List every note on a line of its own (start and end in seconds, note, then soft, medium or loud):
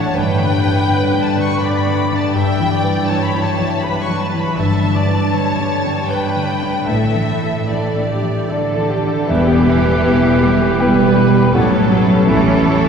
0.00 0.11 A2 soft
0.00 0.12 A2 soft
0.00 0.19 A2 soft
0.00 0.18 E3 soft
0.00 0.38 A3 soft
0.00 0.17 D4 soft
0.00 0.62 D4 soft
0.00 0.18 A4 soft
0.00 1.10 A4 soft
0.00 0.15 C#5 medium
0.00 1.35 D5 soft
0.00 0.16 A5 medium
0.15 0.83 G1 soft
0.15 4.54 G2 soft
0.15 2.31 G2 soft
0.15 2.33 G2 soft
0.15 1.61 B4 medium
0.15 1.23 G5 medium
0.39 0.78 D3 soft
0.39 1.84 A3 soft
0.64 2.38 D4 soft
0.64 1.02 B4 soft
0.87 1.26 D3 soft
0.87 1.59 B4 soft
1.12 1.51 D4 soft
1.12 2.38 A4 soft
1.24 1.42 A5 medium
1.36 1.76 D3 soft
1.36 2.38 D5 soft
1.41 1.59 C#6 medium
1.59 3.08 B4 soft
1.59 2.00 B4 soft
1.59 2.34 D5 soft
1.59 2.15 B5 medium
1.85 2.26 D3 soft
1.85 2.37 A3 soft
2.10 2.38 D3 soft
2.10 2.35 D4 soft
2.17 2.35 A5 medium
2.34 4.56 G2 soft
2.34 4.54 G2 soft
2.34 2.72 E5 medium
2.34 3.08 G5 medium
2.59 2.99 E3 soft
2.59 4.06 F#3 soft
2.72 3.08 D5 soft
2.84 4.61 E4 soft
2.84 3.24 B4 soft
3.08 3.49 E3 soft
3.08 3.82 B4 soft
3.08 3.83 C#5 soft
3.08 3.27 A5 medium
3.26 3.45 B5 medium
3.33 3.74 E4 soft
3.33 4.61 F#4 soft
3.43 3.82 A5 medium
3.58 3.98 E3 soft
3.58 4.60 E5 soft
3.81 5.31 B4 soft
3.81 4.58 B4 soft
3.81 4.23 B4 soft
3.81 4.01 B5 medium
4.01 4.20 C#6 medium
4.08 4.48 E3 soft
4.08 4.61 F#3 soft
4.21 4.39 A5 medium
4.33 4.61 E3 soft
4.33 4.58 E4 soft
4.41 4.59 B5 medium
4.57 5.29 G1 soft
4.57 6.93 G2 soft
4.57 6.85 G2 soft
4.57 6.86 G2 soft
4.57 4.95 E5 medium
4.57 6.07 A5 medium
4.83 5.23 D3 soft
4.83 6.35 A3 soft
4.95 5.33 D5 soft
5.07 6.93 G4 soft
5.07 5.48 B4 soft
5.33 5.74 D3 soft
5.33 6.09 B4 soft
5.33 6.10 C#5 medium
5.59 6.00 D4 soft
5.59 7.70 A4 soft
5.84 6.26 D3 soft
5.84 6.93 G5 soft
6.10 6.89 B4 soft
6.10 6.93 B4 soft
6.10 6.52 B4 soft
6.10 6.89 G5 medium
6.36 6.78 D3 soft
6.36 7.17 A3 soft
6.62 6.93 D3 soft
6.62 6.89 D4 soft
6.88 7.66 A1 soft
6.88 8.47 A2 soft
6.88 9.25 A2 soft
6.88 9.33 A2 soft
6.88 7.62 A4 soft
6.88 7.68 E5 medium
7.15 7.59 E3 soft
7.15 8.78 A3 soft
7.42 7.98 E4 soft
7.42 7.86 A4 soft
7.69 8.12 E3 soft
7.69 8.07 A4 soft
7.69 8.51 A4 soft
7.69 8.91 D5 soft
7.96 8.39 D4 soft
7.96 9.67 E4 soft
8.11 8.51 G4 soft
8.22 8.66 E3 soft
8.22 10.24 E5 soft
8.49 9.25 D3 soft
8.49 8.93 A4 soft
8.49 8.90 A4 soft
8.49 9.26 A4 soft
8.49 9.33 A4 soft
8.49 9.26 D5 soft
8.76 9.18 E3 soft
8.76 9.33 A3 soft
8.90 9.29 G4 soft
9.02 9.33 E3 soft
9.02 9.29 D4 soft
9.28 9.96 E1 medium
9.28 11.51 E1 soft
9.28 11.51 E2 soft
9.28 11.59 E2 soft
9.28 10.80 E3 medium
9.28 9.47 G3 soft
9.28 11.51 G3 soft
9.28 11.52 B3 soft
9.28 9.47 E4 soft
9.28 10.81 G4 medium
9.28 11.51 G4 medium
9.28 9.46 B4 soft
9.28 11.56 B4 soft
9.28 10.77 E5 medium
9.47 9.67 B3 soft
9.47 10.99 B3 soft
9.47 9.67 G4 soft
9.66 9.86 G3 soft
9.66 9.86 E4 soft
9.66 10.80 E4 soft
9.66 9.86 B4 soft
9.85 10.05 B3 soft
9.85 10.05 G4 soft
9.85 11.58 G4 soft
10.04 10.71 E1 medium
10.04 10.23 G3 soft
10.04 10.77 B3 soft
10.04 10.22 E4 soft
10.04 10.77 E4 soft
10.04 10.77 G4 soft
10.04 10.23 B4 soft
10.23 10.43 B3 soft
10.23 10.43 G4 soft
10.23 10.44 G4 soft
10.23 12.47 E5 soft
10.43 10.62 G3 soft
10.43 10.62 E4 soft
10.43 10.62 B4 soft
10.43 11.58 G5 soft
10.61 10.80 B3 soft
10.61 10.80 G4 soft
10.61 11.58 B4 soft
10.79 11.46 E1 soft
10.79 10.97 G3 soft
10.79 11.54 G3 medium
10.79 11.51 B3 soft
10.79 10.97 E4 soft
10.79 11.92 E4 soft
10.79 11.51 E4 soft
10.79 11.51 G4 soft
10.79 11.54 B4 medium
10.79 10.98 B4 soft
10.79 11.51 G5 medium
10.98 11.17 B3 soft
10.98 11.35 B3 soft
10.98 11.17 G4 soft
10.98 11.18 G4 soft
11.16 11.58 B2 soft
11.16 11.35 G3 soft
11.16 11.35 E4 soft
11.16 11.37 B4 soft
11.34 11.54 B3 soft
11.34 11.58 B3 soft
11.34 11.54 G4 soft
11.34 11.55 G4 soft
11.53 12.88 A1 medium
11.53 12.21 A1 medium
11.53 12.88 A2 soft
11.53 12.28 F#3 medium
11.53 11.71 A3 soft
11.53 12.88 A3 medium
11.53 12.88 C#4 soft
11.53 11.71 E4 soft
11.53 12.28 A4 medium
11.53 12.88 A4 medium
11.53 11.72 C#5 soft
11.53 12.88 C#5 soft
11.53 12.26 F#5 medium
11.72 11.92 C#4 soft
11.72 11.93 A4 soft
11.90 12.10 A3 soft
11.90 12.10 E4 soft
11.90 12.88 E4 soft
11.90 12.11 C#5 soft
12.09 12.29 C#4 soft
12.09 12.88 A4 soft
12.09 12.30 A4 soft
12.27 12.88 A1 medium
12.27 12.88 E3 medium
12.27 12.46 A3 soft
12.27 12.88 C#4 soft
12.27 12.46 E4 soft
12.27 12.88 E4 soft
12.27 12.88 A4 medium
12.27 12.88 A4 soft
12.27 12.83 C#5 soft
12.27 12.47 C#5 soft
12.27 12.88 E5 medium
12.46 12.66 C#4 soft
12.46 12.67 A4 soft
12.46 12.88 E5 soft
12.66 12.85 A3 soft
12.66 12.85 E4 soft
12.66 12.86 C#5 soft
12.66 12.88 A5 soft
12.84 12.88 C#4 soft
12.84 12.88 C#5 soft